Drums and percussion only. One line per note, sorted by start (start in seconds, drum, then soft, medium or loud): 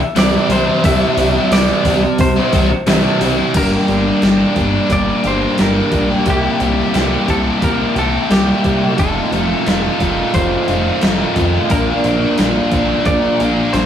0.16 snare loud
0.16 open hi-hat medium
0.50 open hi-hat medium
0.84 kick loud
0.84 open hi-hat loud
1.18 open hi-hat medium
1.52 snare loud
1.52 open hi-hat medium
1.85 kick medium
1.85 open hi-hat medium
2.18 kick loud
2.18 open hi-hat medium
2.53 kick medium
2.53 open hi-hat medium
2.87 snare loud
2.87 open hi-hat medium
3.21 open hi-hat medium
3.54 kick loud
3.54 open hi-hat medium
3.54 crash loud
3.88 open hi-hat soft
4.22 snare loud
4.22 open hi-hat medium
4.56 kick medium
4.56 open hi-hat soft
4.90 kick loud
4.90 open hi-hat medium
5.24 open hi-hat soft
5.58 snare loud
5.58 open hi-hat medium
5.92 kick medium
5.92 open hi-hat soft
6.10 snare soft
6.26 kick loud
6.26 open hi-hat medium
6.60 open hi-hat medium
6.94 snare loud
6.94 open hi-hat medium
7.28 kick medium
7.28 open hi-hat soft
7.62 kick loud
7.62 open hi-hat medium
7.96 open hi-hat soft
8.31 snare loud
8.31 open hi-hat medium
8.64 kick medium
8.64 open hi-hat soft
8.98 kick loud
8.98 open hi-hat medium
9.33 open hi-hat soft
9.67 snare loud
9.67 open hi-hat medium
10.00 kick medium
10.00 open hi-hat soft
10.34 kick loud
10.34 open hi-hat medium
10.68 open hi-hat soft
11.02 snare loud
11.02 open hi-hat medium
11.36 kick medium
11.36 open hi-hat medium
11.70 kick loud
11.70 open hi-hat medium
12.04 open hi-hat medium
12.38 snare loud
12.38 open hi-hat medium
12.72 kick medium
12.72 open hi-hat medium
13.05 kick loud
13.05 open hi-hat medium
13.40 open hi-hat soft
13.74 snare medium
13.74 open hi-hat medium